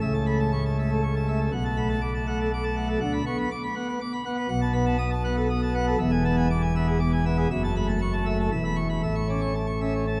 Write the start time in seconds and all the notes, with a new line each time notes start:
0.01 C#2 C#3 E5
0.14 A5
0.26 A3 B5
0.40 A5
0.52 C#6
0.65 A5
0.78 A3 E5
0.91 A4
1.03 C#6
1.16 A5
1.28 A3 E5
1.40 A4
1.52 B1 B2 F#5
1.65 A5
1.77 A3 B5
1.89 A5
2.01 D6
2.15 A5
2.27 A3 F#5
2.41 A4
2.53 D6
2.64 A5
2.76 A3 F#5
2.88 A4
3.01 D2 D3 F#5
3.13 B5
3.26 B3 C#6
3.38 B5
3.51 D6
3.64 B5
3.76 B3 F#5
3.89 B4
4.01 D6
4.13 B5
4.25 B3 F#5
4.38 B4
4.48 B1 B2 F#5
4.61 A5
4.73 B3 B5
4.86 A5
4.98 D#6
5.11 A5
5.24 B3 F#5
5.37 A4
5.50 D#6
5.63 A5
5.74 B3 F#5
5.87 A4
5.99 E1 E2 E5
6.11 G#5
6.25 B3 A5
6.37 G#5
6.50 D6
6.62 G#5
6.75 B3 E5
6.87 G#4
7.00 D6
7.12 G#5
7.25 B3 E5
7.37 G#4
7.51 F#1 F#2 E5
7.64 A5
7.76 A3 B5
7.89 A5
8.02 C#6
8.13 A5
8.25 A3 E5
8.40 A4
8.51 E1 E2 E5
8.64 B5
8.76 C#6
8.89 B5
9.02 A1 A2 E5
9.16 C#6
9.29 C#4 D6
9.42 C#6
9.54 A5
9.67 C#6
9.81 C#4 E5
9.94 C#5
10.07 A5